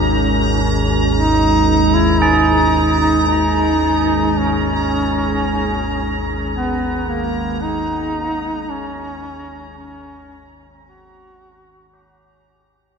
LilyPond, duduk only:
\new Staff \with { instrumentName = "Duduk" } { \time 4/4 \key dis \phrygian \tempo 4 = 55 r4 dis'8. e'16 dis'8. dis'16 dis'4 | cis'4.~ cis'16 r16 b8 ais8 dis'4 | cis'4 cis'8. r16 fis'4. r8 | }